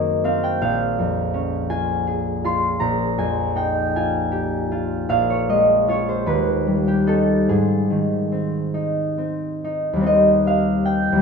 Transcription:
Already playing: F#2 D#3 A#3 C4 G#4 A#4 C5 D#5
0.24 C4 F5
0.44 G5
0.61 A#1 F5
0.99 F2
1.34 C#4
1.70 F4 G#5
2.07 G#4
2.44 F4 C6
2.80 A#1 A#5
3.18 F2 G#5
3.56 D#4 G5
3.96 F4 G#5
4.32 G4
4.72 F4
5.09 A#1 F5
5.30 C#5
5.49 G#3 D#5
5.87 C#4 F4 C#5
6.09 C5
6.26 D#2 B4
6.67 G3
6.88 G4
7.07 C#4 D#4 A4
7.49 G#2 G#4
7.90 D#3
8.32 C4
8.74 D#4
9.18 C4
9.64 D#4
9.93 D#2 G3
10.00 C4 D#4
10.06 D#5
10.47 F5
10.86 G5
11.12 D#2 G3
11.19 C4

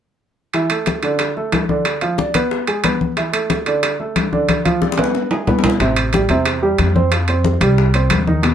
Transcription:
0.54 E3 E4, high bongo, high conga, high timbale
0.70 A3 A4, high conga, high timbale
0.86 high bongo, high conga, high timbale
1.03 D3 D4, high conga, high timbale
1.19 high bongo, high conga, high timbale
1.37 A3 A4, high conga
1.52 high bongo, low bongo, high conga, high timbale, low timbale
1.69 D3 D4, high conga
1.85 high bongo, high conga, high timbale
2.01 F3 F4, high bongo, high conga, high timbale
2.18 D4 D5, high bongo, high conga
2.34 B3 B4, high bongo, high conga, high timbale
2.51 high bongo, high conga
2.67 G#3 G#4, high bongo, high conga, high timbale
2.84 B3 B4, high bongo, low bongo, high conga, high timbale
3.01 high conga
3.17 E3 E4, high bongo, high conga, high timbale
3.33 A3 A4, high conga, high timbale
3.50 high bongo, high conga, high timbale
3.66 D3 D4, high conga, high timbale
3.83 high bongo, high conga, high timbale
4.00 A3 A4, high conga
4.16 high bongo, low bongo, high conga, high timbale
4.32 D3 D4, high conga
4.49 high bongo, high conga, high timbale
4.65 F3 F4, high bongo, high conga, high timbale
4.82 D4 D5, high bongo, high conga
4.92 high bongo
4.97 B3 B4, high conga, high timbale
5.04 low bongo
5.15 low bongo
5.31 G#3 G#4, low timbale
5.47 B3 B4, low bongo, low conga, low timbale
5.59 low bongo
5.64 low conga, low timbale
5.70 low bongo
5.80 A1 C3 C4, high bongo, high conga, high timbale
5.96 high conga, high timbale
6.13 G3 G4, high bongo, high conga, high timbale
6.29 E2 C3 C4, high conga, high timbale
6.46 high bongo, high conga, high timbale
6.62 G3 G4, high conga
6.79 F2, high bongo, low bongo, high conga, high timbale
6.96 C4 C5, high conga
7.12 F3 F4, high bongo, high conga, high timbale
7.28 C4 C5, high bongo, high conga, high timbale
7.44 high bongo, high conga
7.61 C2 G3 G4, high conga, high timbale
7.78 high bongo, high conga
7.94 C4 C5, high bongo, high conga, high timbale
8.10 D#2, high bongo, low bongo, high conga, high timbale
8.27 D#3 D#4, high conga
8.43 B2 B3, high bongo, high conga, high timbale

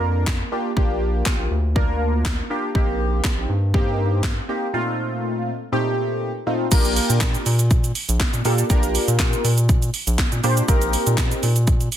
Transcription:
Already playing: F2 A#3 D4 F4 A#4
0.27 kick, snare, clap
0.52 A#3 D4 F4 G4
0.76 A#1 A#3 D4 F4 G4, kick
1.26 kick, snare, clap
1.39 A#1
1.51 D2
1.75 A#3 D4 F4 A#4, kick
2.25 kick, snare, clap
2.50 A#3 D4 F4 G4
2.75 A#1 A#3 C4 D#4 G4, kick
3.24 kick, snare, clap
3.38 A#1
3.49 G2
3.74 A#3 C4 D#4 G4, kick
4.23 kick, snare, clap
4.49 A#3 C4 D#4 G4
4.73 A#2 A3 C4 D#4 F4
5.72 A#2 A3 C4 D#4 G4
6.46 A#2 A3 C4 D#4 F4
6.71 A#1 A#3 D4 F4 G4 A#4, kick, closed hi-hat, crash, shaker
6.85 closed hi-hat, shaker
6.96 open hi-hat, shaker
7.10 A#2, closed hi-hat, shaker
7.21 kick, snare, clap, closed hi-hat, shaker
7.35 closed hi-hat, shaker
7.46 A#2, open hi-hat, shaker
7.59 closed hi-hat, shaker
7.71 kick, closed hi-hat, shaker
7.84 closed hi-hat, shaker
7.95 open hi-hat, shaker
8.09 A#1, closed hi-hat, shaker
8.20 kick, snare, clap, closed hi-hat, shaker
8.33 A#2, closed hi-hat, shaker
8.45 A#2 A#3 D4 F4 G4 A4, open hi-hat, shaker
8.58 closed hi-hat, shaker
8.70 A#1 A#3 D4 F4 G4 A#4, kick, closed hi-hat, shaker
8.83 closed hi-hat, shaker
8.95 open hi-hat, shaker
9.08 A#2, closed hi-hat, shaker
9.19 kick, snare, clap, closed hi-hat, shaker
9.33 closed hi-hat, shaker
9.44 A#2, open hi-hat, shaker
9.58 closed hi-hat, shaker
9.69 kick, closed hi-hat, shaker
9.82 closed hi-hat, shaker
9.94 open hi-hat, shaker
10.07 A#1, closed hi-hat, shaker
10.18 kick, snare, clap, closed hi-hat, shaker
10.32 A#2, closed hi-hat, shaker
10.43 A#2 A#3 D4 F4 G4 C5, open hi-hat, shaker
10.57 closed hi-hat, shaker
10.68 A#1 A#3 C4 D#4 G4 A#4, kick, closed hi-hat, shaker
10.82 closed hi-hat, shaker
10.93 open hi-hat, shaker
11.07 A#2, closed hi-hat, shaker
11.18 kick, snare, clap, closed hi-hat, shaker
11.31 closed hi-hat, shaker
11.43 A#2, open hi-hat, shaker
11.56 closed hi-hat, shaker
11.67 kick, closed hi-hat, shaker
11.81 closed hi-hat, shaker
11.92 open hi-hat, shaker

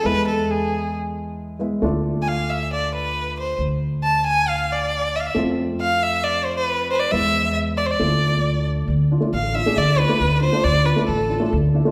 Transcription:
0.03 E2 G#3 B3 E4 B4
0.28 A4
0.44 A4
0.50 G#4
1.59 G#3 B3 E4
1.82 D2 A3 D4 F4
2.22 G#5
2.28 F5
2.50 E5
2.73 D5
2.95 B4
3.40 C5
3.58 D2
4.03 A5
4.26 G#5
4.48 F5
4.72 D5
5.16 E5
5.20 F5
5.26 E5
5.35 F2 A3 C4 F4
5.81 F5
6.03 E5
6.23 D5
6.45 C5
6.56 B4
6.91 B4 C5
6.96 C5
7.00 D5
7.11 E2 G#3 B3 E4 E5
7.77 D5
7.86 C5
7.91 D5
7.99 D2 A3 D4 F4
8.88 D2
9.11 D4 F4
9.20 A3 D4 F4
9.33 A1 F5
9.54 D4 F4 E5
9.66 A3 D4 G#4
9.76 D2 D5
9.98 D4 F4 B4
10.09 A3 D4 F4
10.20 D2
10.41 D4 F4 C5
10.53 A3 D4 F4
10.64 D2 D5
10.84 D4 F4 B4
10.96 A3 D4 F4
11.06 A1 A4
11.29 D4 F4
11.40 A3 D4 F4
11.53 D2
11.74 D4 E4
11.85 A3 D4 F4

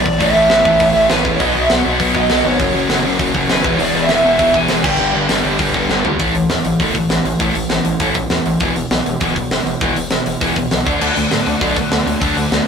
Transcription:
Already playing: D5
0.06 A1, kick
0.19 A1 A2 E3 A3 C#4 E4 E5, kick, open hi-hat
0.35 A1
0.50 A1, snare, open hi-hat
0.65 A1 A2 E3 A3, kick
0.80 A1, kick, open hi-hat
0.95 A1
1.09 A1 A2 E3 A3 B4, snare, open hi-hat
1.25 E1, kick
1.32 C#5
1.40 B1 B2 F#3 B3 D#5, kick, open hi-hat
1.55 B1 B2 F#3 B3
1.62 E5
1.69 B1 B2 F#3 B3 F#5, snare, open hi-hat
1.84 B1 B2 F#3 B3
1.93 F#5
2.00 B1 B2 F#3 B3, kick, open hi-hat
2.15 B1 B2 F#3 B3 D#5, kick
2.29 B1 B2 F#3 B3, snare, open hi-hat
2.44 G#1 B2 F#3 B3 C#5
2.59 F#1 F#2 C#3 F#3, kick, open hi-hat
2.73 F#1 F#2 C#3 F#3
2.89 F#1 F#2 C#3 F#3, snare, open hi-hat
3.04 F#1 F#2 C#3 F#3
3.18 F#1 F#2 C#3 F#3, kick, open hi-hat
3.34 F#1 F#2 C#3 F#3, kick
3.49 D#1 F#2 C#3 F#3 B4, snare, open hi-hat
3.63 E1 E2 B2 E3, kick
3.74 C#5
3.78 E1 E2 B2 E3 B3 E4 G#4, open hi-hat
3.82 D5
3.94 E1 E2 B2 E3
4.03 E5
4.08 E1 E2 B2 E3, snare, open hi-hat
4.12 E5
4.23 E1 E2 B2 E3
4.34 E5
4.39 E1 E2 B2 E3, kick, open hi-hat
4.53 E1 E2 B2 E3 G#5, kick
4.68 E1 E2 B2 E3, snare, open hi-hat
4.84 G1 G2 D3 G3 B3 D4 G4 G5, kick, crash
4.98 G1 G2 D3 G3
5.13 G1 G2 D3 G3
5.29 G1 G2 D3 G3, snare, open hi-hat
5.44 G1 G2 D3 G3
5.59 G1 G2 D3 G3, kick, open hi-hat
5.74 G1 G2 D3 G3, kick
5.89 G1 G2 D3 G3, snare
6.04 D2 G2 D3 G3, floor tom
6.19 A1 A2 E3 A3, kick, open hi-hat
6.34 A1 A2 E3, open hi-hat
6.49 E2 A2 E3, snare, open hi-hat
6.64 A1 A2 E3, open hi-hat
6.80 F#1 A2 E3 A3, kick, open hi-hat
6.94 A2 E3, kick, open hi-hat
7.09 A1 A2 E3, snare, open hi-hat
7.25 A1 A2 E3, open hi-hat
7.40 A1 A2 E3 A3, kick, open hi-hat
7.54 A1 A2 E3, open hi-hat
7.69 A1 A2 E3, snare, open hi-hat
7.84 A1 A2 E3, open hi-hat
8.00 A1 A2 E3 A3, kick, open hi-hat
8.14 A1 A2 E3, kick, open hi-hat
8.30 E2 A2 E3, snare, open hi-hat
8.46 A1 A2 E3, open hi-hat
8.60 E1 E2 B2 E3, kick, open hi-hat
8.75 E1 E2 B2, open hi-hat
8.91 B1 E2 B2, snare, open hi-hat
9.06 E1 E2 B2, open hi-hat
9.20 D1 E2 B2 E3, kick, open hi-hat
9.36 E2 B2, kick, open hi-hat
9.51 E1 E2 B2, snare, open hi-hat
9.66 E1 E2 B2, open hi-hat
9.80 E1 E2 B2 E3, kick, open hi-hat
9.96 E1 E2 B2, open hi-hat
10.11 E1 E2 B2, snare, open hi-hat
10.26 E1 E2 B2, open hi-hat
10.41 E1 E2 B2 E3, kick, open hi-hat
10.56 E1 E2 B2, kick, open hi-hat
10.71 B1 E2 B2, snare, open hi-hat
10.85 D2 D3 A3 D4, kick, open hi-hat
11.00 D2 D3 F#3 A3 D4, crash
11.15 D2 D3 A3, open hi-hat
11.31 A2 D3 A3, snare, open hi-hat
11.45 D2 D3 F#3 A3 D4, open hi-hat
11.60 B1 D3 A3 D4, kick, open hi-hat
11.76 D3 A3, kick, open hi-hat
11.91 D2 D3 A3, snare, open hi-hat
12.06 D2 D3 A3, open hi-hat
12.21 D2 D3 F#3 A3 D4, kick, open hi-hat
12.36 D2 D3 A3, open hi-hat
12.51 D2 D3 A3, snare, open hi-hat

